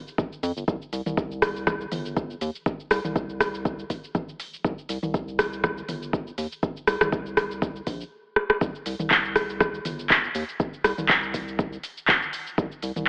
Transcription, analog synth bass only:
0, 0, Header, 1, 2, 480
1, 0, Start_track
1, 0, Key_signature, -3, "minor"
1, 0, Tempo, 495868
1, 656, Time_signature, 4, 2, 24, 8
1, 12666, End_track
2, 0, Start_track
2, 0, Title_t, "Analog synth bass"
2, 0, Program_c, 0, 38
2, 416, Note_on_c, 0, 41, 104
2, 503, Note_off_c, 0, 41, 0
2, 548, Note_on_c, 0, 31, 78
2, 620, Note_off_c, 0, 31, 0
2, 657, Note_on_c, 0, 36, 98
2, 743, Note_off_c, 0, 36, 0
2, 897, Note_on_c, 0, 36, 87
2, 983, Note_off_c, 0, 36, 0
2, 1028, Note_on_c, 0, 36, 82
2, 1797, Note_off_c, 0, 36, 0
2, 1857, Note_on_c, 0, 31, 79
2, 2277, Note_off_c, 0, 31, 0
2, 2336, Note_on_c, 0, 39, 93
2, 2423, Note_off_c, 0, 39, 0
2, 2817, Note_on_c, 0, 36, 87
2, 2903, Note_off_c, 0, 36, 0
2, 2949, Note_on_c, 0, 36, 78
2, 3718, Note_off_c, 0, 36, 0
2, 4497, Note_on_c, 0, 36, 102
2, 4583, Note_off_c, 0, 36, 0
2, 4737, Note_on_c, 0, 36, 87
2, 4823, Note_off_c, 0, 36, 0
2, 4868, Note_on_c, 0, 36, 80
2, 5637, Note_off_c, 0, 36, 0
2, 5697, Note_on_c, 0, 31, 80
2, 6117, Note_off_c, 0, 31, 0
2, 6176, Note_on_c, 0, 39, 96
2, 6262, Note_off_c, 0, 39, 0
2, 6656, Note_on_c, 0, 36, 86
2, 6743, Note_off_c, 0, 36, 0
2, 6789, Note_on_c, 0, 36, 80
2, 7558, Note_off_c, 0, 36, 0
2, 7617, Note_on_c, 0, 34, 97
2, 7782, Note_off_c, 0, 34, 0
2, 8338, Note_on_c, 0, 36, 99
2, 8424, Note_off_c, 0, 36, 0
2, 8579, Note_on_c, 0, 36, 86
2, 8664, Note_off_c, 0, 36, 0
2, 8711, Note_on_c, 0, 36, 80
2, 9479, Note_off_c, 0, 36, 0
2, 9540, Note_on_c, 0, 31, 80
2, 9958, Note_off_c, 0, 31, 0
2, 10019, Note_on_c, 0, 39, 96
2, 10104, Note_off_c, 0, 39, 0
2, 10498, Note_on_c, 0, 36, 84
2, 10584, Note_off_c, 0, 36, 0
2, 10630, Note_on_c, 0, 36, 82
2, 11398, Note_off_c, 0, 36, 0
2, 12177, Note_on_c, 0, 36, 102
2, 12263, Note_off_c, 0, 36, 0
2, 12419, Note_on_c, 0, 36, 88
2, 12504, Note_off_c, 0, 36, 0
2, 12549, Note_on_c, 0, 36, 82
2, 12666, Note_off_c, 0, 36, 0
2, 12666, End_track
0, 0, End_of_file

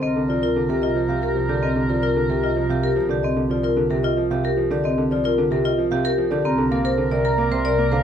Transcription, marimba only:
0, 0, Header, 1, 2, 480
1, 0, Start_track
1, 0, Key_signature, -3, "minor"
1, 0, Tempo, 535714
1, 17, Time_signature, 3, 2, 24, 8
1, 7195, End_track
2, 0, Start_track
2, 0, Title_t, "Marimba"
2, 0, Program_c, 0, 12
2, 24, Note_on_c, 0, 60, 95
2, 176, Note_off_c, 0, 60, 0
2, 267, Note_on_c, 0, 65, 73
2, 375, Note_off_c, 0, 65, 0
2, 385, Note_on_c, 0, 65, 98
2, 536, Note_off_c, 0, 65, 0
2, 626, Note_on_c, 0, 70, 76
2, 744, Note_on_c, 0, 65, 99
2, 776, Note_off_c, 0, 70, 0
2, 896, Note_off_c, 0, 65, 0
2, 982, Note_on_c, 0, 67, 73
2, 1103, Note_on_c, 0, 70, 90
2, 1135, Note_off_c, 0, 67, 0
2, 1255, Note_off_c, 0, 70, 0
2, 1338, Note_on_c, 0, 67, 72
2, 1457, Note_on_c, 0, 60, 90
2, 1494, Note_off_c, 0, 67, 0
2, 1613, Note_off_c, 0, 60, 0
2, 1699, Note_on_c, 0, 65, 77
2, 1810, Note_off_c, 0, 65, 0
2, 1820, Note_on_c, 0, 65, 98
2, 1974, Note_off_c, 0, 65, 0
2, 2060, Note_on_c, 0, 70, 73
2, 2182, Note_on_c, 0, 65, 98
2, 2214, Note_off_c, 0, 70, 0
2, 2335, Note_off_c, 0, 65, 0
2, 2422, Note_on_c, 0, 67, 80
2, 2541, Note_on_c, 0, 70, 98
2, 2575, Note_off_c, 0, 67, 0
2, 2694, Note_off_c, 0, 70, 0
2, 2785, Note_on_c, 0, 67, 76
2, 2905, Note_on_c, 0, 60, 90
2, 2936, Note_off_c, 0, 67, 0
2, 3056, Note_off_c, 0, 60, 0
2, 3146, Note_on_c, 0, 65, 75
2, 3252, Note_off_c, 0, 65, 0
2, 3263, Note_on_c, 0, 65, 97
2, 3415, Note_off_c, 0, 65, 0
2, 3499, Note_on_c, 0, 70, 80
2, 3623, Note_on_c, 0, 65, 102
2, 3654, Note_off_c, 0, 70, 0
2, 3775, Note_off_c, 0, 65, 0
2, 3863, Note_on_c, 0, 67, 78
2, 3985, Note_on_c, 0, 70, 103
2, 4016, Note_off_c, 0, 67, 0
2, 4136, Note_off_c, 0, 70, 0
2, 4226, Note_on_c, 0, 67, 75
2, 4346, Note_on_c, 0, 60, 100
2, 4376, Note_off_c, 0, 67, 0
2, 4496, Note_off_c, 0, 60, 0
2, 4589, Note_on_c, 0, 65, 84
2, 4695, Note_off_c, 0, 65, 0
2, 4706, Note_on_c, 0, 65, 113
2, 4856, Note_off_c, 0, 65, 0
2, 4945, Note_on_c, 0, 70, 87
2, 5063, Note_on_c, 0, 65, 102
2, 5096, Note_off_c, 0, 70, 0
2, 5215, Note_off_c, 0, 65, 0
2, 5301, Note_on_c, 0, 67, 82
2, 5421, Note_on_c, 0, 70, 114
2, 5455, Note_off_c, 0, 67, 0
2, 5574, Note_off_c, 0, 70, 0
2, 5661, Note_on_c, 0, 67, 80
2, 5780, Note_on_c, 0, 60, 113
2, 5815, Note_off_c, 0, 67, 0
2, 5934, Note_off_c, 0, 60, 0
2, 6019, Note_on_c, 0, 70, 87
2, 6127, Note_off_c, 0, 70, 0
2, 6138, Note_on_c, 0, 70, 109
2, 6294, Note_off_c, 0, 70, 0
2, 6375, Note_on_c, 0, 74, 92
2, 6496, Note_on_c, 0, 70, 114
2, 6532, Note_off_c, 0, 74, 0
2, 6653, Note_off_c, 0, 70, 0
2, 6735, Note_on_c, 0, 72, 91
2, 6854, Note_on_c, 0, 74, 112
2, 6892, Note_off_c, 0, 72, 0
2, 7012, Note_off_c, 0, 74, 0
2, 7094, Note_on_c, 0, 72, 85
2, 7195, Note_off_c, 0, 72, 0
2, 7195, End_track
0, 0, End_of_file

